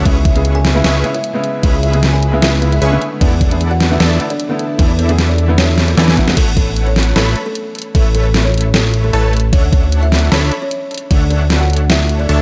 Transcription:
0.04 C#2 C#3 G#3 B3 C#4 E4 G#4 B4 E5 C#6, kick, closed hi-hat, crash
0.25 E4 E5, kick, closed hi-hat
0.35 C#3 G#3 B3 G#4, closed hi-hat
0.45 closed hi-hat
0.55 G#4 G#5
0.65 snare, closed hi-hat
0.74 C#3 G#3 B3 E4
0.84 C#2 C#4 E4 G#4 B4 E5 C#6, snare, closed hi-hat, crash
1.03 C#3 G#3 B3 E4, closed hi-hat
1.14 E4 E5, closed hi-hat
1.24 closed hi-hat
1.33 C#3 G#3 B3 E4
1.44 closed hi-hat
1.62 C#2 C#3 G#3 B3 C#4 E4 G#4 B4 E5 B5, kick, closed hi-hat, crash
1.83 E4 E5, closed hi-hat
1.92 C#3 G#3 B3 G#4, closed hi-hat
2.03 snare, closed hi-hat
2.13 G#4 G#5
2.23 closed hi-hat
2.32 C#3 G#3 B3 E4
2.42 E4 E5, snare, closed hi-hat, crash
2.61 C#3 G#3 B3 E4, closed hi-hat
2.72 E4 E5, closed hi-hat
2.82 C#2 C#4 G#4 B4 E5 C#6, closed hi-hat
2.91 D3 A3 B3 E4
3.01 E3 D4 A4, closed hi-hat
3.20 E2 D3 E3 A3 B3 D4 E4 A4 D5 F#5, kick, closed hi-hat, crash
3.41 D4 D5, kick, closed hi-hat
3.50 D3 A3 B3 G#4, closed hi-hat
3.61 closed hi-hat
3.71 F#4 F#5
3.80 snare, closed hi-hat
3.90 D3 A3 B3 E4
4.00 E2 E3 D4 E4 A4 D5 A5, snare, closed hi-hat, crash
4.19 D3 A3 B3 E4, closed hi-hat
4.30 D4 D5, closed hi-hat
4.40 closed hi-hat
4.49 D3 A3 B3 E4
4.59 closed hi-hat
4.78 E2 D3 E3 A3 B3 E4 A4 B4 D5 E5, kick, closed hi-hat, crash
4.99 B3 B4, closed hi-hat
5.08 D3 A3 B3 G#4, closed hi-hat
5.19 snare, closed hi-hat
5.29 D4 D5
5.38 closed hi-hat
5.48 D3 A3 B3 E4
5.58 C#4 C#5, snare, closed hi-hat, crash
5.78 snare, closed hi-hat
5.88 B3 B4, closed hi-hat
5.96 E2 D3 E3 A3 B3 E4 A4 D5 G#5, snare, closed hi-hat
6.08 snare
6.16 D3 A3 B3 E4, kick, closed hi-hat
6.27 D3 A3 B3 F#4, snare
6.37 A1 A3 A4 B4 C#5 F#5, kick, closed hi-hat, crash
6.57 A3 A4, kick, closed hi-hat
6.76 closed hi-hat
6.87 C#4 C#5
6.96 snare, closed hi-hat
7.00 closed hi-hat
7.03 closed hi-hat
7.16 A1 A3 A4 B4 C#5 B5, snare, closed hi-hat, crash
7.36 closed hi-hat
7.46 A3 A4
7.55 closed hi-hat
7.75 closed hi-hat
7.79 closed hi-hat
7.82 closed hi-hat
7.95 A1 A3 A4 B4 C#5 E5, kick, closed hi-hat, crash
8.15 A3 A4, closed hi-hat
8.34 snare, closed hi-hat
8.45 C#4 C#5
8.54 closed hi-hat
8.58 closed hi-hat
8.61 closed hi-hat
8.74 A3 A4, snare, closed hi-hat, crash
8.94 closed hi-hat
9.04 A3 A4
9.13 A1 A3 A4 B4 C#5 A5, closed hi-hat
9.33 closed hi-hat
9.37 closed hi-hat
9.40 closed hi-hat
9.53 D2 C#4 D4 A4 C#5 E5 F#5, kick, closed hi-hat, crash
9.72 C#4 C#5, kick, closed hi-hat
9.92 closed hi-hat
10.03 E4 E5
10.12 snare, closed hi-hat
10.15 closed hi-hat
10.19 closed hi-hat
10.32 D2 C#4 D4 A4 C#5 E5 B5, snare, closed hi-hat, crash
10.52 closed hi-hat
10.62 C#4 C#5
10.71 closed hi-hat
10.91 closed hi-hat
10.94 closed hi-hat
10.98 closed hi-hat
11.11 D2 D4 A4 C#5 D5 E5 F#5, kick, closed hi-hat, crash
11.30 D4 D5, closed hi-hat
11.50 snare, closed hi-hat
11.60 F#4 F#5
11.70 closed hi-hat
11.73 closed hi-hat
11.77 closed hi-hat
11.90 E4 E5, snare, closed hi-hat, crash
12.09 closed hi-hat
12.20 D4 D5
12.29 D2 D4 A4 C#5 E5 A5, closed hi-hat

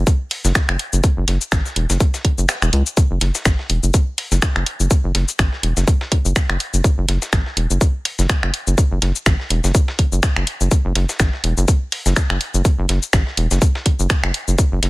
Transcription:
0.07 kick, closed hi-hat, cabasa
0.31 closed hi-hat, open hi-hat
0.45 F#1, snare, cabasa
0.55 finger snap, kick, snare, closed hi-hat, cabasa
0.69 F#1, finger snap
0.79 closed hi-hat
0.93 F#1, cabasa
1.04 kick, closed hi-hat, cabasa
1.17 F#1
1.28 F#1, snare, closed hi-hat
1.41 cabasa
1.52 A1, finger snap, kick, snare, closed hi-hat, cabasa
1.66 snare, cabasa
1.76 E1, closed hi-hat
1.90 F#1, snare, cabasa
2.00 kick, closed hi-hat, cabasa
2.14 snare, cabasa
2.25 kick, closed hi-hat
2.38 F#1, cabasa
2.49 finger snap, snare, closed hi-hat, cabasa
2.62 E1, finger snap, cabasa
2.73 C#2, closed hi-hat
2.86 cabasa
2.97 kick, closed hi-hat, cabasa
3.11 F#1
3.21 F#1, snare, closed hi-hat
3.35 snare, cabasa
3.45 A1, finger snap, kick, snare, closed hi-hat, cabasa
3.59 snare
3.70 E1, closed hi-hat
3.83 F#1, cabasa
3.94 kick, closed hi-hat, cabasa
4.18 closed hi-hat, open hi-hat
4.32 F#1, snare, cabasa
4.42 finger snap, kick, snare, closed hi-hat, cabasa
4.56 F#1, finger snap
4.66 closed hi-hat
4.80 F#1, cabasa
4.91 kick, closed hi-hat, cabasa
5.04 F#1
5.15 F#1, snare, closed hi-hat
5.28 cabasa
5.39 A1, finger snap, kick, snare, closed hi-hat, cabasa
5.53 snare
5.63 E1, closed hi-hat
5.77 F#1, snare, cabasa
5.87 kick, closed hi-hat, cabasa
6.01 snare
6.12 kick, closed hi-hat
6.25 F#1, cabasa
6.36 finger snap, kick, snare, closed hi-hat, cabasa
6.49 F#1, finger snap
6.60 closed hi-hat
6.74 F#1, cabasa
6.84 kick, closed hi-hat, cabasa
6.98 F#1
7.09 F#1, snare, closed hi-hat
7.22 snare, cabasa
7.33 A1, finger snap, kick, snare, closed hi-hat, cabasa
7.46 snare
7.57 E1, closed hi-hat
7.70 F#1, cabasa
7.81 kick, closed hi-hat, cabasa
8.05 closed hi-hat, open hi-hat
8.19 F#1, snare, cabasa
8.29 finger snap, kick, snare, closed hi-hat, cabasa
8.43 F#1, finger snap
8.54 closed hi-hat
8.67 F#1, cabasa
8.78 kick, closed hi-hat, cabasa
8.91 F#1
9.02 F#1, snare, closed hi-hat
9.16 cabasa
9.26 A1, finger snap, kick, snare, closed hi-hat, cabasa
9.40 snare
9.50 E1, closed hi-hat
9.64 F#1, snare, cabasa
9.75 kick, closed hi-hat, cabasa
9.88 snare
9.99 kick, closed hi-hat
10.12 F#1, cabasa
10.23 finger snap, kick, snare, closed hi-hat, cabasa
10.36 F#1, finger snap
10.47 closed hi-hat
10.61 F#1, cabasa
10.71 kick, closed hi-hat, cabasa
10.85 F#1
10.95 F#1, snare, closed hi-hat
11.09 snare, cabasa
11.20 A1, finger snap, kick, snare, closed hi-hat, cabasa
11.33 snare
11.44 E1, closed hi-hat
11.57 F#1, cabasa
11.68 kick, closed hi-hat, cabasa
11.92 closed hi-hat, open hi-hat
12.06 F#1, snare, cabasa
12.16 finger snap, kick, snare, closed hi-hat, cabasa
12.30 F#1, finger snap
12.41 closed hi-hat
12.54 F#1, cabasa
12.65 kick, closed hi-hat, cabasa
12.79 F#1
12.89 F#1, snare, closed hi-hat
13.03 cabasa
13.13 A1, finger snap, kick, snare, closed hi-hat, cabasa
13.27 snare
13.37 E1, closed hi-hat
13.51 F#1, snare, cabasa
13.62 kick, closed hi-hat, cabasa
13.75 snare
13.86 kick, closed hi-hat
13.99 F#1, cabasa
14.10 finger snap, kick, snare, closed hi-hat, cabasa
14.24 F#1, finger snap
14.34 closed hi-hat
14.48 F#1, cabasa
14.58 kick, closed hi-hat, cabasa
14.72 F#1
14.83 F#1, snare, closed hi-hat

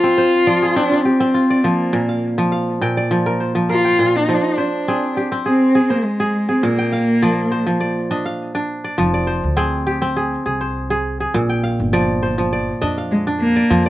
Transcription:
Already playing: F3 F4 G4 G#4 C5
0.04 C4
0.18 C5
0.47 F3 D5
0.62 G#4
0.76 C4 D4
0.92 F4
1.04 C4 G4
1.20 C4
1.34 F4
1.50 D5
1.64 F3 A#3
1.93 A#2
2.09 F5
2.38 F3
2.52 F5
2.81 A#2 G5
2.97 D5
3.11 F3
3.26 A#4
3.40 C5
3.55 F3
3.69 F4 A#4
3.85 G5
3.99 A#2
4.16 D#4
4.29 F3
4.58 D4 C5
4.88 C4 G#4
5.17 G4
5.32 C4
5.46 C4 G#4
5.75 G#4
5.90 A#3 C5
6.04 G#3
6.20 G#4
6.49 C4 G#4
6.62 A#2 A#3
6.79 G5
6.92 F5
7.22 F3 D5
7.52 C5
7.67 F3
7.80 D5
8.11 D4 D#5
8.26 F5
8.55 D4
8.84 D5
8.98 F1 F3
9.14 D5
9.27 C5
9.44 D2
9.57 C4 G#4
9.87 G4
10.02 C4
10.17 G#4
10.46 C2 G#4
10.61 C5
10.90 G#4
11.20 G#4
11.34 A#1 A#2
11.49 G5
11.63 F5
11.80 G1
11.93 F3 D5
12.23 C5
12.38 F3
12.53 D5
12.81 F2 D4 D#5
12.98 F5
13.11 G#3
13.27 D4
13.40 A#3
13.56 D5
13.70 F2 F3, shaker
13.86 D5

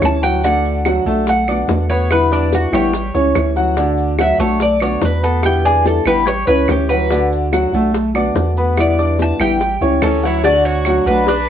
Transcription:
Already playing: C#4 C#5 C#6
0.01 D2 E3 G3 C#4 E4 A5, high bongo, low bongo, claves, maracas
0.23 F#3 F#4 F#5 G5, high bongo, maracas
0.44 D3 A3 D4 F#4 D5 F#5, high bongo, maracas
0.65 maracas
0.85 D3 F#3 A3 D4 F#4 F#5, high bongo, claves, maracas
1.05 B1 A3 D4 F#4 A4 A5, maracas
1.27 F#5, muted nylon-string guitar stroke, high bongo, maracas
1.48 D3 A3 B3 D4 F#4 D5 D6, claves, maracas
1.68 E2 D3 A3 B3 F#4, high bongo, low bongo, maracas
1.90 B3 B4 C#5 B5, maracas
2.10 B2 D3 G3 B3 E4 B4, high bongo, claves, maracas
2.31 D4 D5 D6, high bongo, maracas
2.51 D3 G3 B3 E4 F#4, high bongo, maracas
2.72 A1 D3 G3 B3 E4 G4 C#5 G5, claves, maracas
2.93 muted nylon-string guitar stroke, high bongo, maracas
3.14 C#2 G3 C#4 E4 C#5 C#6, high bongo, maracas
3.35 D2 E3 G3 C#4 E4, high bongo, low bongo, claves, maracas
3.56 F#3 F#4 F#5, high bongo, maracas
3.77 D3 A3 D4 F#4 D5, high bongo, maracas
3.98 maracas
4.19 D3 F#3 A3 D4 F#4 E5 F#5, high bongo, claves, maracas
4.39 B1 A3 D4 F#4 A4 C#5 A5, maracas
4.60 D5, muted nylon-string guitar stroke, high bongo, maracas
4.80 D3 A3 B3 D4 F#4 C#5 D5 D6, claves, maracas
5.01 E2 A3 B3 B4, high bongo, low bongo, maracas
5.23 B3 A4 B4 B5, maracas
5.43 B2 D3 G3 B3 E4 G4, high bongo, claves, maracas
5.64 D4 G#4 D5 D6, high bongo, maracas
5.85 D3 G3 B3 E4 A4, high bongo, maracas
6.05 A1 D3 G3 B3 E4 G4 B4 G5, claves, maracas
6.26 C#5, muted nylon-string guitar stroke, high bongo, maracas
6.47 C#2 G3 C#4 E4 B4 C#5 C#6, high bongo, maracas
6.68 D2 E3 G3 C#4 E4 G4, high bongo, low bongo, claves, maracas
6.89 F#3 F#4 B4 F#5, high bongo, maracas
7.09 D3 A3 D4 F#4 D5, high bongo, maracas
7.32 maracas
7.51 D3 F#3 A3 D4 F#4 F#5, high bongo, claves, maracas
7.72 B1 A3 D4 F#4 A4 A5, maracas
7.93 muted nylon-string guitar stroke, high bongo, maracas
8.14 D3 A3 B3 D4 F#4 D5 D6, claves, maracas
8.35 E2 D3 A3 B3 F#4, high bongo, low bongo, maracas
8.57 B3 B4 B5, maracas
8.77 B2 D3 G3 B3 E4 D5, high bongo, claves, maracas
8.98 D4 D5 D6, high bongo, maracas
9.19 D3 G3 B3 E4 A5, high bongo, maracas
9.39 A1 D3 G3 B3 E4 G4 G5, claves, maracas
9.61 muted nylon-string guitar stroke, high bongo, maracas
9.81 C#2 G3 C#4 E4 C#5 C#6, high bongo, maracas
10.01 D2 E3 G3 C#4 E4 A4, high bongo, low bongo, claves, maracas
10.23 F#3 E4 F#4 C#5 F#5, high bongo, maracas
10.43 D3 A3 D4 F#4 D5, cowbell, maracas
10.65 F#4 C#5, maracas
10.85 D3 F#3 A3 D4 F#4 F#5, cowbell, claves, maracas
11.06 B1 A3 D4 F#4 B4, cowbell, maracas
11.27 D4 B4 D5 D6, muted nylon-string guitar stroke, cowbell, maracas

